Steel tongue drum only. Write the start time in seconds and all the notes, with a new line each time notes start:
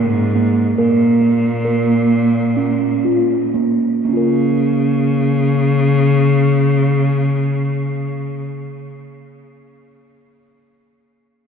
Already playing: A#4
0.36 A#3
0.78 A#3 A#4
1.21 A#3
1.65 A#4
2.57 C#4
3.05 F4
3.54 A#3
4.05 A#3
4.09 C#4
4.13 F4 A#4